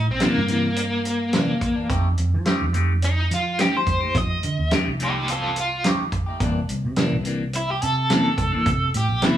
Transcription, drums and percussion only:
0.20 snare, closed hi-hat
0.48 closed hi-hat
0.76 closed hi-hat
1.05 closed hi-hat
1.33 snare, closed hi-hat
1.61 kick, closed hi-hat
1.90 kick, closed hi-hat
2.18 closed hi-hat
2.46 snare, closed hi-hat
2.74 closed hi-hat
3.02 closed hi-hat
3.31 closed hi-hat
3.59 snare, closed hi-hat
3.87 kick, closed hi-hat
4.15 kick, closed hi-hat
4.43 closed hi-hat
4.71 snare, closed hi-hat
5.00 closed hi-hat
5.28 closed hi-hat
5.56 closed hi-hat
5.84 snare, closed hi-hat
6.12 kick, closed hi-hat
6.40 kick, closed hi-hat
6.69 closed hi-hat
6.96 snare, closed hi-hat
7.25 closed hi-hat
7.53 closed hi-hat
7.82 closed hi-hat
8.10 snare, closed hi-hat
8.38 kick, closed hi-hat
8.66 kick, closed hi-hat
8.94 closed hi-hat
9.22 snare, closed hi-hat

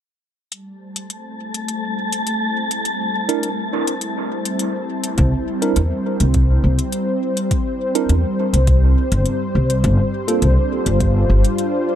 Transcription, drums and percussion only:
0.52 closed hi-hat
0.96 closed hi-hat
1.10 closed hi-hat
1.54 closed hi-hat
1.68 closed hi-hat
2.13 closed hi-hat
2.27 closed hi-hat
2.71 closed hi-hat
2.85 closed hi-hat
3.29 closed hi-hat
3.43 closed hi-hat
3.87 closed hi-hat
4.01 closed hi-hat
4.45 closed hi-hat
4.59 closed hi-hat
5.04 closed hi-hat
5.18 kick, closed hi-hat
5.62 closed hi-hat
5.76 closed hi-hat
6.20 closed hi-hat
6.34 kick, closed hi-hat
6.79 closed hi-hat
6.92 closed hi-hat
7.37 closed hi-hat
7.51 kick, closed hi-hat
7.95 closed hi-hat
8.09 closed hi-hat
8.54 closed hi-hat
8.67 kick, closed hi-hat
9.12 closed hi-hat
9.26 closed hi-hat
9.70 closed hi-hat
9.84 kick, closed hi-hat
10.28 closed hi-hat
10.42 closed hi-hat
10.86 closed hi-hat
11.00 kick, closed hi-hat
11.45 closed hi-hat
11.58 closed hi-hat

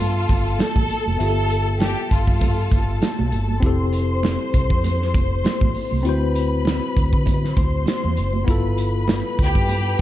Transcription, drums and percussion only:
0.29 kick, closed hi-hat, muted conga
0.59 snare, closed hi-hat, high conga
0.76 kick, high conga
0.89 closed hi-hat
1.06 high conga
1.20 closed hi-hat, muted conga
1.50 closed hi-hat
1.80 snare, closed hi-hat, high conga
2.11 kick, closed hi-hat
2.27 kick
2.41 kick, closed hi-hat, muted conga
2.72 kick, closed hi-hat, muted conga
3.02 snare, closed hi-hat, high conga
3.19 high conga
3.32 closed hi-hat
3.48 high conga
3.62 kick, closed hi-hat
3.93 closed hi-hat
4.23 snare, closed hi-hat, high conga
4.54 kick, closed hi-hat
4.70 kick
4.84 closed hi-hat, muted conga
5.02 snare
5.14 kick, closed hi-hat, muted conga
5.44 snare, closed hi-hat, high conga
5.61 kick, high conga
5.75 open hi-hat
5.91 high conga
6.05 closed hi-hat, muted conga
6.35 closed hi-hat
6.65 snare, closed hi-hat, high conga
6.97 kick, closed hi-hat
7.13 kick
7.26 kick, closed hi-hat, muted conga
7.45 snare
7.57 kick, closed hi-hat, muted conga
7.86 snare, closed hi-hat, high conga
8.04 high conga
8.17 closed hi-hat
8.33 high conga
8.47 kick, closed hi-hat, muted conga
8.78 closed hi-hat
9.08 snare, closed hi-hat, high conga
9.39 kick, closed hi-hat
9.55 kick
9.69 closed hi-hat, muted conga

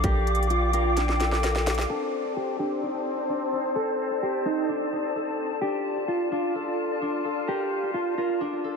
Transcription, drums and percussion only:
0.04 kick, closed hi-hat
0.27 closed hi-hat
0.35 closed hi-hat
0.43 closed hi-hat
0.50 closed hi-hat
0.73 closed hi-hat
0.97 snare, closed hi-hat
1.09 snare
1.20 snare, closed hi-hat
1.32 snare
1.44 snare, closed hi-hat
1.56 snare
1.67 snare, closed hi-hat
1.75 snare, closed hi-hat
1.82 closed hi-hat

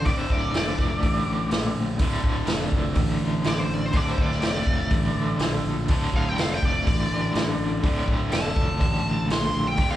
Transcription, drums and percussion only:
0.05 kick, open hi-hat
0.30 kick
0.54 snare, open hi-hat
0.79 kick, snare
1.03 kick, open hi-hat
1.51 snare, open hi-hat
1.99 kick, open hi-hat
2.24 kick
2.47 snare, open hi-hat
2.72 kick
2.95 kick, open hi-hat
3.44 snare, open hi-hat
3.93 kick, open hi-hat
4.18 kick
4.31 snare
4.42 snare, open hi-hat
4.67 kick
4.90 kick, open hi-hat
5.39 snare, open hi-hat
5.88 kick, open hi-hat
6.14 kick
6.38 snare, open hi-hat
6.63 kick
6.87 kick, open hi-hat
7.35 snare, open hi-hat
7.83 kick, open hi-hat
8.08 kick
8.32 snare, open hi-hat
8.56 kick
8.81 kick, open hi-hat
9.30 snare, open hi-hat
9.77 kick, open hi-hat

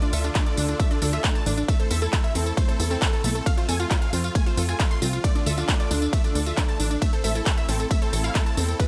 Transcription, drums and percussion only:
0.02 closed hi-hat, tambourine
0.13 open hi-hat, tambourine
0.24 closed hi-hat, tambourine
0.35 kick, clap, closed hi-hat, ride, tambourine
0.46 closed hi-hat, tambourine
0.57 open hi-hat, tambourine
0.69 closed hi-hat, tambourine
0.80 kick, closed hi-hat, ride, tambourine
0.91 closed hi-hat, tambourine
1.02 open hi-hat, tambourine
1.13 closed hi-hat, tambourine
1.24 kick, clap, closed hi-hat, ride, tambourine
1.35 closed hi-hat, tambourine
1.46 open hi-hat, tambourine
1.57 closed hi-hat, tambourine
1.68 kick, closed hi-hat, ride, tambourine
1.80 closed hi-hat, tambourine
1.91 open hi-hat, tambourine
2.02 closed hi-hat, tambourine
2.13 kick, clap, closed hi-hat, ride, tambourine
2.24 closed hi-hat, tambourine
2.35 open hi-hat, tambourine
2.46 closed hi-hat, tambourine
2.57 kick, closed hi-hat, ride, tambourine
2.69 closed hi-hat, tambourine
2.80 open hi-hat, tambourine
2.91 closed hi-hat, tambourine
3.02 kick, clap, closed hi-hat, ride, tambourine
3.13 closed hi-hat, tambourine
3.24 open hi-hat, tambourine
3.35 closed hi-hat, tambourine
3.46 kick, closed hi-hat, ride, tambourine
3.58 closed hi-hat, tambourine
3.69 open hi-hat, tambourine
3.80 closed hi-hat, tambourine
3.91 kick, clap, closed hi-hat, ride, tambourine
4.02 closed hi-hat, tambourine
4.13 open hi-hat, tambourine
4.24 closed hi-hat, tambourine
4.35 kick, closed hi-hat, ride, tambourine
4.46 closed hi-hat, tambourine
4.57 open hi-hat, tambourine
4.69 closed hi-hat, tambourine
4.80 kick, clap, closed hi-hat, ride, tambourine
4.91 closed hi-hat, tambourine
5.02 open hi-hat, tambourine
5.13 closed hi-hat, tambourine
5.24 kick, closed hi-hat, ride, tambourine
5.35 closed hi-hat, tambourine
5.46 open hi-hat, tambourine
5.58 closed hi-hat, tambourine
5.68 kick, clap, closed hi-hat, ride, tambourine
5.80 closed hi-hat, tambourine
5.91 open hi-hat, tambourine
6.02 closed hi-hat, tambourine
6.13 kick, closed hi-hat, ride, tambourine
6.24 closed hi-hat, tambourine
6.35 open hi-hat, tambourine
6.46 closed hi-hat, tambourine
6.57 kick, clap, closed hi-hat, ride, tambourine
6.69 closed hi-hat, tambourine
6.80 open hi-hat, tambourine
6.91 closed hi-hat, tambourine
7.02 kick, closed hi-hat, ride, tambourine
7.13 closed hi-hat, tambourine
7.24 open hi-hat, tambourine
7.35 closed hi-hat, tambourine
7.46 kick, clap, closed hi-hat, ride, tambourine
7.57 closed hi-hat, tambourine
7.69 open hi-hat, tambourine
7.80 closed hi-hat, tambourine
7.91 kick, closed hi-hat, ride, tambourine
8.02 closed hi-hat, tambourine
8.13 open hi-hat, tambourine
8.24 closed hi-hat, tambourine
8.35 kick, clap, closed hi-hat, ride, tambourine
8.46 closed hi-hat, tambourine
8.57 open hi-hat, tambourine
8.69 closed hi-hat, tambourine
8.80 kick, closed hi-hat, ride, tambourine

